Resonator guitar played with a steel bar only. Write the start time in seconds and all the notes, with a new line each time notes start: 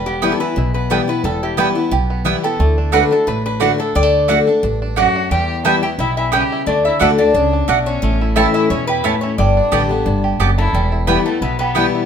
0.06 G4
0.32 A4
0.40 B4
0.74 B4
0.91 A4
1.09 B4
1.25 A4
1.43 G4
1.60 B4
2.44 A4
2.93 B4
3.12 A4
3.28 B4
3.46 B4
3.80 A4
3.96 D5
4.98 F#5
5.31 G5
5.65 A5
5.83 G5
6.00 E5
6.17 E5
6.33 G5
6.67 D5
6.85 E5
7.02 E5
7.18 D5
7.86 C#5
8.36 E5
8.54 E5
8.70 C#5
8.87 B4
9.21 C#5
9.38 D5
10.58 A4
11.07 B4
11.26 A4
11.42 B4
11.59 B4